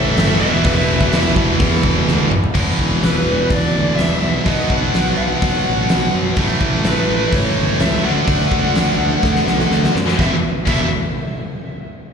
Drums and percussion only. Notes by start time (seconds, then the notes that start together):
0.17 snare, open hi-hat
0.64 kick, open hi-hat
1.01 kick, snare
1.13 snare, open hi-hat
1.36 kick
1.60 kick, open hi-hat
1.83 kick
2.08 snare
2.31 mid tom
2.44 floor tom
2.55 kick, crash
2.79 kick
3.03 snare, open hi-hat
3.50 kick, open hi-hat
3.98 snare, open hi-hat
4.46 kick, open hi-hat
4.70 kick
4.94 snare, open hi-hat
5.42 kick, open hi-hat
5.89 snare, open hi-hat
6.36 kick, open hi-hat
6.61 kick
6.84 snare, open hi-hat
7.32 kick, open hi-hat
7.80 snare, open hi-hat
8.28 kick, open hi-hat
8.52 kick
8.76 snare, open hi-hat
9.23 kick, snare
9.36 snare
9.48 snare
9.60 snare
9.71 snare
9.84 snare
9.96 snare
10.08 snare
10.19 kick, snare
10.67 kick, crash